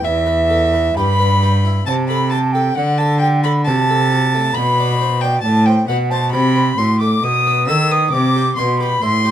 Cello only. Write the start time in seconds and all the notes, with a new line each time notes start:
0.04 E2
0.97 G2
1.87 C3
2.77 D3
3.66 C3
4.56 B2
5.44 A2
5.88 B2
6.33 C3
6.77 A2
7.23 B2
7.69 D#3
8.13 C3
8.58 B2
9.02 A2